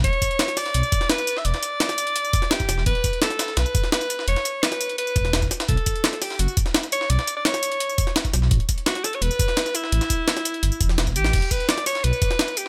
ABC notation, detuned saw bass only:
X:1
M:4/4
L:1/8
Q:1/4=170
K:Edor
V:1 name="Detuned saw bass" clef=bass
E,,, z3 B,,, z3 | E,,, z6 E,,, | E,,, z3 B,,, z3 | E,,, z4 E,,,2 z |
B,,, z3 F,,, z3 | B,,, z6 B,,, | A,,, z3 E,,, z3 | A,,, z3 G,,, E,,,2 A,,, |
E,,, z3 B,,, z3 |]